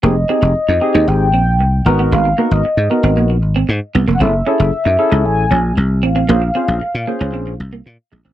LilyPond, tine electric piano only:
\new Staff \with { instrumentName = "Tine electric piano" } { \time 4/4 \key f \minor \tempo 4 = 115 <c' ees' g' aes'>8 <c' ees' g' aes'>8 r8 <c' ees' g' aes'>4 r4 <ces' ees' ges' bes'>8~ | <ces' ees' ges' bes'>8 <ces' ees' ges' bes'>8 r8 <ces' ees' ges' bes'>4 r4. | <des' fes' aes' a'>8 <des' fes' aes' a'>8 r8 <des' fes' aes' a'>4 r4. | <des' f' aes' c''>8 <des' f' aes' c''>8 r8 <des' f' aes' c''>4 r4. | }